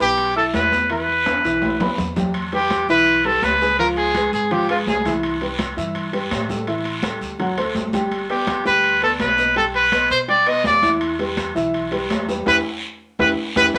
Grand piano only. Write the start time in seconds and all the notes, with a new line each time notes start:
0.00 B3 B4 B5
0.36 E4 E5 E6
0.72 B3 B4 B5
0.90 E3 E4 E5
1.26 B3 B4 B5
1.44 E3 E4 E5
1.81 B3 B4 B5
2.16 G3 G4 G5
2.53 G3 G4 B4
2.89 E3 E4 E5
3.25 G3 G4 B4
3.61 G#3 G#4 B4
3.79 F3 F4 F5
4.15 G#3 G#4 B4
4.51 F3 F4 F5
4.69 G#3 G#4 B4
5.05 E3 E4 E5
5.42 G3 G4 B4
5.77 E3 E4 E5
6.13 G3 G4 B4
6.50 G3 G4 A4
6.68 E3 E4 E5
7.03 G3 G4 A4
7.39 F#3 F#4 F#5
7.58 A3 A4 C5
7.94 G3 G4 G5
8.30 B3 B4 D5
8.65 G3 G4 G5
9.02 B3 B4 D5
9.38 B3 B4 D#5
9.56 G3 G4 G5
9.92 B3 B4 D#5
10.28 G3 G4 G5
10.46 B3 B4 D#5
10.82 E3 E4 E5
11.19 G3 G4 B4
11.55 E3 E4 E5
11.91 G3 G4 B4
12.28 G3 G4 B4
12.46 E4 G4 B4
13.19 E4 G4 B4
13.56 E4 G4 B4
13.74 E4 G4 B4